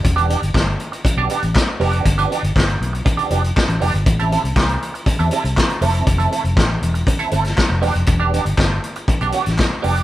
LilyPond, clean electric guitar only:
\new Staff \with { instrumentName = "Clean electric guitar" } { \time 4/4 \key e \phrygian \tempo 4 = 120 r16 <g b d' g'>16 <g b d' g'>16 r4. <g b d' g'>16 <g b d' g'>16 r8. <g b d' g'>16 <g b d' g'>16 | r16 <f b d' g'>16 <f b d' g'>16 r4. <f b d' g'>16 <f b d' g'>16 r8. <f b d' g'>16 r16 | r16 <g c' e' a'>16 <g c' e' a'>16 r4. <g c' e' a'>16 <g c' e' a'>16 r8. <a c' e' a'>16 <a c' e' a'>16 | r16 <a c' e' a'>16 <a c' e' a'>16 r4. <a c' e' a'>16 <a c' e' a'>16 r8. <g b d' g'>16 r16 |
r16 <g b d' g'>16 <g b d' g'>16 r4. <g b d' g'>16 <g b d' g'>8 r8 <g b d' g'>16 <g b d' g'>16 | }